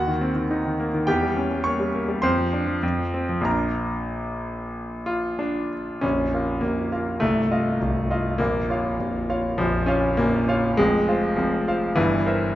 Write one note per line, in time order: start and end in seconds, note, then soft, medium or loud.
0.00 1.05 D#2 medium
0.00 1.04 F#4 medium
0.00 1.07 F#5 medium
0.07 0.30 D#3 medium
0.21 0.44 C4 medium
0.35 0.59 D#3 medium
0.51 0.74 D#4 medium
0.65 0.88 D#3 medium
0.80 1.02 A#3 medium
0.94 1.08 D#3 medium
1.07 2.20 E2 medium
1.07 1.61 G4 medium
1.07 1.64 G5 medium
1.23 1.45 G3 medium
1.37 1.59 C#4 medium
1.51 1.74 G3 medium
1.64 1.88 A#3 soft
1.64 2.19 C#5 medium
1.64 2.23 C#6 medium
1.80 2.03 G3 medium
1.94 2.18 A#3 medium
2.08 2.23 G3 medium
2.22 2.81 F2 medium
2.22 3.41 C5 medium
2.22 3.45 C6 medium
2.38 2.61 F3 medium
2.53 2.77 D4 medium
2.67 2.82 F3 medium
2.83 3.44 F2 medium
2.99 3.23 F3 soft
3.14 3.39 C4 medium
3.29 3.41 F3 medium
3.41 5.97 A#1 medium
3.41 5.97 F3 medium
3.41 5.98 A#3 medium
3.41 5.37 D4 medium
3.41 5.72 A#5 medium
3.46 5.68 A#4 medium
5.06 5.39 F4 medium
5.39 6.02 D4 medium
6.01 6.32 A#0 medium
6.01 6.32 A#1 medium
6.01 6.62 C#4 medium
6.33 6.60 F4 soft
6.33 6.60 A#4 soft
6.33 6.60 F5 soft
6.61 6.91 A#0 medium
6.61 6.91 A#1 soft
6.61 7.20 A#3 medium
6.92 7.18 F4 soft
6.92 7.18 A#4 soft
6.92 7.18 F5 soft
7.20 7.50 C1 medium
7.20 7.50 C2 medium
7.20 8.38 A3 medium
7.51 7.77 F4 soft
7.51 7.77 D#5 medium
7.51 7.78 F5 medium
7.81 8.09 C1 medium
7.81 8.09 C2 medium
8.10 8.37 F4 medium
8.10 8.37 D#5 medium
8.10 8.37 F5 medium
8.38 8.68 A#0 medium
8.38 8.68 A#1 medium
8.38 9.58 A#3 medium
8.70 8.96 F4 soft
8.70 8.96 C#5 soft
8.70 8.97 F5 medium
8.99 9.28 A#0 medium
8.99 9.28 A#1 soft
9.29 9.56 F4 soft
9.29 9.56 C#5 medium
9.29 9.56 F5 medium
9.58 9.88 A#0 medium
9.58 9.87 A#1 medium
9.58 9.88 F3 medium
9.86 10.17 C#4 medium
9.86 10.15 F4 medium
9.86 10.15 C#5 medium
9.86 10.15 F5 medium
10.17 10.47 A#0 medium
10.17 10.47 A#1 medium
10.17 10.77 A#3 medium
10.48 10.75 F4 medium
10.48 10.75 C#5 medium
10.48 10.75 F5 medium
10.77 11.07 F1 medium
10.77 11.07 F2 medium
10.77 11.37 G#3 loud
11.08 11.34 F4 medium
11.08 11.35 C5 medium
11.08 11.35 F5 medium
11.36 11.66 F1 medium
11.36 11.66 F2 medium
11.36 11.96 F3 medium
11.68 11.94 F4 medium
11.68 11.94 C5 medium
11.68 11.95 F5 medium
11.96 12.26 G1 medium
11.96 12.26 G2 medium
11.96 12.55 E3 loud
12.26 12.53 A#4 medium
12.26 12.53 C5 medium
12.26 12.54 E5 medium